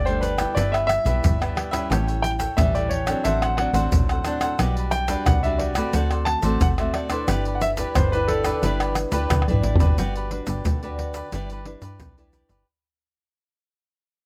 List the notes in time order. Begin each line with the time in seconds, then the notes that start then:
Already playing: G1 D3
0.05 G3 A3 D4 A4 C5 D5 G5, pandeiro, shaker
0.21 D4 A4 B4 D5 G5, pandeiro, shaker
0.38 G3 B3 E4 A4 D5 G5, pandeiro, tamborim, shaker, surdo
0.55 G1 G2 E4 G4 B4 D5 E5, pandeiro, shaker, surdo
0.72 G4 B4 E5, pandeiro, tamborim, shaker
0.87 E5, muted cavaquinho stroke, pandeiro, tamborim, shaker
1.05 B1 G3 B3 E4 G4 B4 E5, pandeiro, shaker, surdo
1.24 G1 G2, pandeiro, shaker, surdo
1.40 G3 B3 E4 G4 B4 E5, pandeiro, tamborim, shaker
1.55 E4 G4 B4 E5, pandeiro, tamborim
1.71 G3 C#4 E4 G4 B4 E5, pandeiro, tamborim, shaker, surdo
1.90 A1 A2 G4 A4 C#5 G5, pandeiro, tamborim, shaker, surdo
2.07 A4 C#5 G5, pandeiro, shaker
2.22 G5, muted cavaquinho stroke, pandeiro, shaker
2.39 A4 C#5 G5, pandeiro, shaker, surdo
2.57 A1 E3 G3 C#4 E4 E5, pandeiro, tamborim, shaker, surdo
2.75 A4 C#5 D5 G5, pandeiro, shaker
2.89 G4 A4 C#5 G5, pandeiro, surdo
3.06 F#3 C4 D4 A4 C#5 G5, pandeiro, tamborim, shaker, surdo
3.24 A1 A2 D4 A4 C5 E5 F#5, pandeiro, shaker, surdo
3.42 A4 C5 F#5, pandeiro, tamborim, shaker
3.57 F#3 C4 D4 F#5, muted cavaquinho stroke, pandeiro, tamborim
3.73 A1 F#3 C4 D4 A4 C5 F#5, pandeiro, shaker, surdo
3.92 A#1 A2, pandeiro, shaker, surdo
4.09 A4 C5 F#5, pandeiro, tamborim, shaker
4.25 F#3 C4 D4 A4 C5 F#5, pandeiro, tamborim, shaker
4.41 A4 C5 F#5, pandeiro, tamborim, shaker, surdo
4.59 B1 B2 G3 D4 F#4 G4 B4 D5, pandeiro, tamborim, shaker, surdo
4.77 G4 B4 D5, pandeiro, shaker
4.91 G5, muted cavaquinho stroke, pandeiro, shaker
5.08 G3 D4 F#4 G4 B4 D5, pandeiro, shaker, surdo
5.26 C2 B2 F#5, pandeiro, tamborim, shaker, surdo
5.43 G3 D4 F#4 G4 B4 D5 E5, pandeiro, shaker
5.58 F#4 G4 B4 D5, pandeiro
5.75 A3 C4 F#4 G4 B4 D5, pandeiro, tamborim, shaker, surdo
5.93 D2 D3 F#4 A4 C5 D5, pandeiro, shaker, surdo
6.11 A4 C5 D5, pandeiro, tamborim, shaker
6.25 A5, muted cavaquinho stroke, pandeiro, tamborim
6.42 A1 A3 C4 F#4 A4 C5 D5, pandeiro, shaker, surdo
6.61 G#1 F#5, pandeiro, shaker, surdo
6.78 A3 C4 F#4 A4 C5 D5 E5, pandeiro, tamborim, shaker
6.94 F#4 A4 C5 D5, pandeiro, tamborim
7.10 D4 E4 A4 B4 C5 D5, pandeiro, tamborim, shaker, surdo
7.28 G1 G3 E4 G4 B4 D5, pandeiro, tamborim, shaker, surdo
7.45 G4 B4 D5, pandeiro, shaker
7.55 F#5
7.61 E5, muted cavaquinho stroke, pandeiro, shaker
7.77 D4 E4 G4 B4 D5, pandeiro, shaker, surdo
7.95 G1 D3 C5, pandeiro, tamborim, shaker, surdo
8.12 D4 E4 G4 B4 D5, pandeiro, shaker
8.28 E4 G4 A4 B4 D5, pandeiro, surdo
8.44 D4 E4 G4 B4 D5, pandeiro, tamborim, shaker, surdo
8.62 G1 G3 D4 E4 G4 B4 D5, pandeiro, shaker, surdo
8.80 G4 B4 D5, pandeiro, tamborim, shaker
8.95 muted cavaquinho stroke, pandeiro, tamborim, shaker
9.11 D2 D4 E4 G4 B4 D5, pandeiro, shaker, surdo
9.30 D2 D3, pandeiro, tamborim, shaker, surdo
9.42 tamborim
9.48 B1 D4 E4 G4 B4 D5, pandeiro, shaker
9.53 surdo
9.62 A1 E4 G4 B4 D5, pandeiro
9.76 D5, surdo
9.80 G1 D4 F#4 G4 B4, pandeiro, shaker, surdo
9.87 surdo
9.98 G1 G3 F#4 G4 B4 D5, pandeiro, shaker, surdo
10.15 G4 B4 D5, pandeiro, shaker
10.31 D4 F#4 B4, muted cavaquinho stroke, pandeiro
10.47 G1 G4 B4 D5, pandeiro, shaker, surdo
10.65 D2 D3, pandeiro, shaker, surdo
10.83 D4 F#4 G4 B4 D5, pandeiro, shaker
10.97 F#4 G4 B4 D5, pandeiro, surdo
11.14 G4 B4 D5, pandeiro, shaker, surdo
11.32 G1 G3 D4 E4 G4 B4 D5, pandeiro, shaker, surdo
11.50 G4 B4 D5, pandeiro, shaker
11.65 D4 E4 B4, muted cavaquinho stroke, pandeiro
11.82 G2 G4 B4 D5, pandeiro, shaker, surdo
12.00 B1, pandeiro, shaker, surdo
12.17 D4 E4 G4 B4 D5, pandeiro, shaker
12.33 E4 G4 B4 D5, pandeiro, shaker
12.49 G1 G4 B4 D5, pandeiro, shaker, surdo